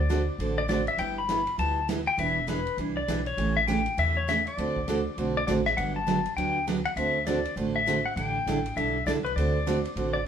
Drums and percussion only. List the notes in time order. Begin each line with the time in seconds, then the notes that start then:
0.10 snare, hi-hat pedal, ride
0.40 ride
0.69 snare, hi-hat pedal, ride
0.87 ride
0.98 ride
1.29 snare, hi-hat pedal, ride
1.47 ride
1.59 ride
1.89 snare, hi-hat pedal, ride
2.18 ride
2.48 snare, hi-hat pedal, ride
2.67 ride
2.78 ride
3.08 snare, hi-hat pedal, ride
3.26 ride
3.38 ride
3.68 snare, hi-hat pedal, ride
3.86 ride
3.98 ride
4.29 snare, hi-hat pedal, ride
4.47 ride
4.58 ride
4.76 kick
4.88 snare, hi-hat pedal, ride
5.18 ride
5.48 snare, hi-hat pedal, ride
5.66 snare, ride
5.78 ride
6.08 snare, hi-hat pedal, ride
6.26 ride
6.38 ride
6.68 snare, hi-hat pedal, ride
6.85 ride
6.97 ride
7.26 snare, hi-hat pedal, ride
7.45 ride
7.57 ride
7.87 snare, hi-hat pedal, ride
8.17 ride
8.47 snare, hi-hat pedal, ride
8.66 ride
8.78 ride
9.08 snare, hi-hat pedal, ride
9.26 ride
9.38 ride
9.67 snare, hi-hat pedal, ride
9.85 ride
9.97 ride